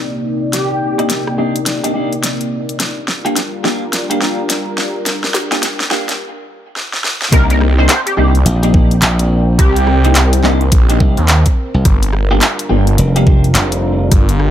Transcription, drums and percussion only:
0.53 snare medium
0.53 closed hi-hat medium
0.99 cross-stick soft
0.99 closed hi-hat soft
1.10 snare medium
1.10 closed hi-hat medium
1.27 cross-stick medium
1.56 closed hi-hat medium
1.66 snare medium
1.66 closed hi-hat medium
1.84 closed hi-hat medium
2.13 closed hi-hat soft
2.23 snare medium
2.23 closed hi-hat medium
2.41 closed hi-hat soft
2.69 closed hi-hat soft
2.80 snare medium
2.80 closed hi-hat medium
3.08 snare medium
3.26 closed hi-hat soft
3.36 snare medium
3.36 closed hi-hat medium
3.65 snare medium
3.93 snare medium
3.93 closed hi-hat medium
4.11 closed hi-hat medium
4.21 snare medium
4.50 snare medium
4.50 closed hi-hat medium
4.78 snare medium
5.06 snare medium
5.06 closed hi-hat medium
5.24 snare medium
5.34 snare loud
5.52 snare medium
5.52 closed hi-hat soft
5.63 snare loud
5.63 closed hi-hat medium
5.80 snare medium
5.91 snare loud
6.09 snare medium
6.09 closed hi-hat medium
6.76 snare medium
6.93 snare medium
7.04 snare medium
7.22 snare medium
7.32 kick loud
7.32 cross-stick soft
7.32 closed hi-hat medium
7.50 closed hi-hat medium
7.61 cross-stick medium
7.89 clap loud
7.89 closed hi-hat medium
8.07 closed hi-hat medium
8.35 closed hi-hat soft
8.46 closed hi-hat medium
8.63 closed hi-hat medium
8.74 kick loud
8.91 closed hi-hat soft
9.02 clap loud
9.02 closed hi-hat medium
9.19 closed hi-hat medium
9.59 kick loud
9.59 cross-stick soft
9.59 closed hi-hat medium
9.76 closed hi-hat medium
9.87 cross-stick medium
10.05 closed hi-hat soft
10.15 clap loud
10.15 closed hi-hat medium
10.33 closed hi-hat medium
10.44 clap medium
10.61 closed hi-hat soft
10.72 kick loud
10.72 closed hi-hat medium
10.90 closed hi-hat medium
11.00 kick loud
11.17 closed hi-hat soft
11.28 clap loud
11.28 closed hi-hat medium
11.46 kick medium
11.46 closed hi-hat medium
11.85 kick loud
11.85 cross-stick soft
11.85 closed hi-hat medium
12.03 closed hi-hat medium
12.13 cross-stick medium
12.41 clap loud
12.41 closed hi-hat medium
12.59 closed hi-hat medium
12.87 closed hi-hat soft
12.98 closed hi-hat medium
13.16 closed hi-hat medium
13.27 kick loud
13.44 closed hi-hat soft
13.55 clap loud
13.55 closed hi-hat medium
13.72 closed hi-hat medium
14.12 kick loud
14.12 cross-stick soft
14.12 closed hi-hat medium
14.29 closed hi-hat medium
14.40 cross-stick medium

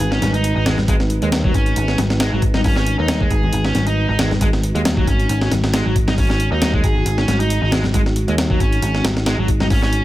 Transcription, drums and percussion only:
0.00 closed hi-hat medium
0.12 snare soft
0.22 snare soft
0.22 closed hi-hat medium
0.22 high conga medium
0.34 closed hi-hat soft
0.44 closed hi-hat medium
0.66 snare loud
0.66 closed hi-hat medium
0.66 low conga medium
0.77 snare soft
0.77 high conga medium
0.88 kick loud
0.88 closed hi-hat medium
1.00 snare soft
1.10 closed hi-hat medium
1.22 closed hi-hat soft
1.32 snare loud
1.32 closed hi-hat medium
1.32 high conga medium
1.44 kick loud
1.54 kick medium
1.54 closed hi-hat medium
1.66 closed hi-hat soft
1.76 closed hi-hat medium
1.88 snare soft
1.98 snare soft
1.98 closed hi-hat medium
1.98 high conga medium
2.10 snare medium
2.20 snare loud
2.20 closed hi-hat medium
2.42 kick loud
2.42 closed hi-hat medium
2.54 snare medium
2.54 high conga medium
2.64 kick loud
2.64 open hi-hat medium
2.76 snare soft
2.86 closed hi-hat medium
3.08 snare loud
3.08 closed hi-hat medium
3.08 high conga medium
3.21 kick loud
3.31 kick medium
3.31 closed hi-hat medium
3.43 low conga medium
3.53 closed hi-hat medium
3.65 snare soft
3.75 snare soft
3.75 closed hi-hat medium
3.75 high conga medium
3.87 closed hi-hat soft
4.18 snare loud
4.18 closed hi-hat medium
4.18 low conga medium
4.30 snare soft
4.30 high conga loud
4.30 low conga medium
4.41 kick loud
4.41 closed hi-hat medium
4.53 snare soft
4.63 closed hi-hat medium
4.75 closed hi-hat soft
4.85 snare loud
4.85 closed hi-hat medium
4.85 high conga medium
4.97 kick loud
5.07 kick medium
5.07 closed hi-hat medium
5.20 closed hi-hat soft
5.29 closed hi-hat medium
5.41 snare soft
5.52 snare soft
5.52 closed hi-hat medium
5.52 high conga medium
5.64 snare medium
5.74 snare loud
5.74 closed hi-hat medium
5.96 kick loud
5.96 closed hi-hat medium
6.07 snare medium
6.07 high conga medium
6.18 kick loud
6.18 open hi-hat medium
6.30 snare soft
6.40 closed hi-hat medium
6.62 snare loud
6.62 closed hi-hat medium
6.62 high conga medium
6.74 kick loud
6.84 kick medium
6.84 closed hi-hat medium
6.95 low conga medium
7.06 closed hi-hat medium
7.18 snare soft
7.28 snare soft
7.28 closed hi-hat medium
7.28 high conga medium
7.40 closed hi-hat soft
7.50 closed hi-hat medium
7.71 snare loud
7.71 closed hi-hat medium
7.71 low conga medium
7.84 snare soft
7.84 high conga medium
7.94 kick loud
7.94 closed hi-hat medium
8.06 snare soft
8.16 closed hi-hat medium
8.28 closed hi-hat soft
8.38 snare loud
8.38 closed hi-hat medium
8.38 high conga medium
8.50 kick loud
8.60 kick medium
8.60 closed hi-hat medium
8.72 closed hi-hat soft
8.82 closed hi-hat medium
8.95 snare soft
9.04 snare loud
9.04 closed hi-hat medium
9.04 high conga medium
9.17 snare medium
9.26 snare loud
9.26 closed hi-hat medium
9.48 kick loud
9.48 closed hi-hat medium
9.60 snare medium
9.60 high conga medium
9.70 kick loud
9.70 open hi-hat medium
9.82 snare soft
9.93 closed hi-hat medium

